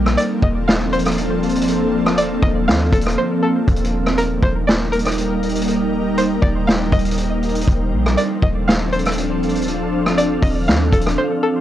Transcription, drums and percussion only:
0.06 cross-stick loud
0.18 closed hi-hat medium
0.42 kick loud
0.69 snare loud
0.93 closed hi-hat medium
0.99 closed hi-hat medium
1.05 cross-stick medium
1.05 closed hi-hat medium
1.11 closed hi-hat medium
1.18 closed hi-hat medium
1.43 closed hi-hat soft
1.49 closed hi-hat medium
1.55 closed hi-hat medium
1.61 closed hi-hat medium
1.68 closed hi-hat medium
2.06 cross-stick loud
2.18 closed hi-hat medium
2.43 kick loud
2.69 snare loud
2.93 kick loud
2.93 closed hi-hat medium
3.01 closed hi-hat medium
3.06 cross-stick loud
3.06 closed hi-hat medium
3.68 kick loud
3.68 closed hi-hat medium
3.76 closed hi-hat medium
3.84 closed hi-hat medium
4.06 cross-stick medium
4.18 closed hi-hat medium
4.43 kick loud
4.69 snare loud
4.93 closed hi-hat medium
4.99 closed hi-hat medium
5.05 cross-stick loud
5.05 closed hi-hat medium
5.12 closed hi-hat medium
5.18 closed hi-hat medium
5.43 closed hi-hat soft
5.49 closed hi-hat soft
5.55 closed hi-hat medium
5.62 closed hi-hat medium
5.68 closed hi-hat medium
6.18 closed hi-hat medium
6.42 kick loud
6.69 snare loud
6.92 kick loud
6.92 closed hi-hat soft
6.99 closed hi-hat medium
7.05 closed hi-hat medium
7.11 closed hi-hat medium
7.18 closed hi-hat medium
7.43 closed hi-hat soft
7.49 closed hi-hat soft
7.55 closed hi-hat medium
7.61 closed hi-hat medium
7.67 kick loud
7.67 closed hi-hat medium
8.06 cross-stick loud
8.18 closed hi-hat medium
8.42 kick loud
8.69 snare loud
8.93 closed hi-hat soft
8.99 closed hi-hat medium
9.05 cross-stick medium
9.05 closed hi-hat medium
9.12 closed hi-hat medium
9.18 closed hi-hat medium
9.43 closed hi-hat soft
9.49 closed hi-hat medium
9.55 closed hi-hat medium
9.62 closed hi-hat medium
9.68 closed hi-hat medium
10.06 cross-stick medium
10.18 closed hi-hat medium
10.43 kick loud
10.43 open hi-hat medium
10.68 snare loud
10.68 hi-hat pedal medium
10.93 kick loud
10.93 closed hi-hat medium
11.01 closed hi-hat medium
11.06 cross-stick loud
11.06 closed hi-hat medium

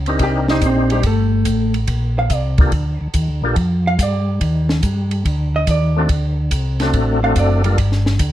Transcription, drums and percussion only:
0.06 ride soft
0.19 kick soft
0.19 ride medium
0.48 snare medium
0.62 kick soft
0.62 hi-hat pedal medium
0.62 ride medium
0.90 ride soft
1.03 kick soft
1.03 ride medium
1.45 kick soft
1.45 hi-hat pedal medium
1.45 ride medium
1.74 ride soft
1.87 kick soft
1.87 ride medium
2.30 kick soft
2.30 hi-hat pedal medium
2.30 ride medium
2.58 kick medium
2.58 ride soft
2.72 kick soft
2.72 ride medium
3.14 kick soft
3.14 hi-hat pedal medium
3.14 ride medium
3.56 kick soft
3.56 ride medium
3.99 kick soft
3.99 hi-hat pedal medium
3.99 ride medium
4.41 kick soft
4.41 ride medium
4.69 snare medium
4.83 kick soft
4.83 hi-hat pedal medium
4.83 ride medium
5.11 ride soft
5.25 kick soft
5.25 ride medium
5.67 kick soft
5.67 hi-hat pedal soft
5.67 ride medium
6.09 kick soft
6.09 ride medium
6.51 kick soft
6.51 hi-hat pedal medium
6.51 ride medium
6.80 snare soft
6.80 ride soft
6.94 kick soft
6.94 ride medium
7.36 kick soft
7.36 hi-hat pedal medium
7.36 ride medium
7.64 ride soft
7.78 kick soft
7.78 ride medium
7.92 snare soft
8.06 snare soft
8.19 kick soft
8.19 hi-hat pedal medium
8.19 ride medium

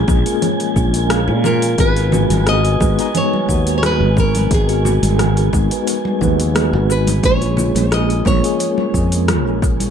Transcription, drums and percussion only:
0.08 kick loud
0.08 shaker medium
0.26 open hi-hat soft
0.26 shaker soft
0.42 open hi-hat medium
0.42 low conga medium
0.42 shaker soft
0.60 open hi-hat soft
0.76 kick medium
0.76 shaker medium
0.94 open hi-hat soft
0.94 shaker soft
1.10 cross-stick loud
1.10 open hi-hat medium
1.10 shaker soft
1.44 low conga medium
1.44 shaker medium
1.62 open hi-hat soft
1.62 shaker soft
1.78 kick loud
1.78 open hi-hat medium
1.78 shaker soft
1.96 open hi-hat soft
2.12 low conga medium
2.12 shaker medium
2.30 open hi-hat soft
2.30 high conga loud
2.30 shaker soft
2.47 cross-stick medium
2.47 open hi-hat medium
2.47 shaker soft
2.65 open hi-hat soft
2.81 kick loud
2.81 high conga medium
2.81 shaker medium
2.99 open hi-hat soft
2.99 shaker soft
3.15 open hi-hat medium
3.15 low conga medium
3.15 shaker soft
3.33 high conga medium
3.49 kick medium
3.49 shaker medium
3.67 open hi-hat soft
3.67 shaker soft
3.83 cross-stick loud
3.83 open hi-hat medium
3.83 high conga medium
3.83 shaker soft
4.17 kick loud
4.17 low conga medium
4.17 shaker medium
4.35 open hi-hat soft
4.35 high conga medium
4.35 shaker soft
4.51 kick loud
4.51 open hi-hat medium
4.51 shaker soft
4.69 open hi-hat soft
4.85 low conga medium
4.85 shaker medium
5.03 open hi-hat soft
5.03 high conga medium
5.03 shaker soft
5.19 cross-stick medium
5.19 open hi-hat medium
5.19 low conga medium
5.19 shaker soft
5.37 open hi-hat soft
5.53 kick loud
5.53 shaker medium
5.71 open hi-hat soft
5.71 shaker soft
5.87 open hi-hat medium
5.87 shaker soft
6.05 high conga loud
6.21 kick medium
6.21 low conga medium
6.21 shaker medium
6.40 open hi-hat soft
6.40 shaker soft
6.56 cross-stick loud
6.56 open hi-hat medium
6.56 high conga medium
6.56 shaker soft
6.73 low conga medium
6.91 shaker medium
7.07 open hi-hat soft
7.07 high conga medium
7.07 low conga medium
7.07 shaker soft
7.23 kick loud
7.23 open hi-hat medium
7.23 low conga medium
7.23 shaker soft
7.42 open hi-hat soft
7.57 low conga medium
7.57 shaker medium
7.75 open hi-hat soft
7.75 high conga medium
7.75 shaker soft
7.92 cross-stick medium
7.92 open hi-hat medium
7.92 shaker soft
8.10 open hi-hat soft
8.26 kick loud
8.26 high conga medium
8.26 low conga medium
8.26 shaker medium
8.44 open hi-hat soft
8.44 shaker soft
8.60 open hi-hat medium
8.60 shaker soft
8.78 high conga medium
8.94 kick medium
8.94 shaker medium
9.12 open hi-hat soft
9.12 shaker soft
9.28 cross-stick loud
9.28 open hi-hat medium
9.28 high conga medium
9.28 low conga medium
9.28 shaker soft
9.62 kick loud
9.62 shaker medium
9.80 open hi-hat soft
9.80 high conga medium
9.80 shaker soft

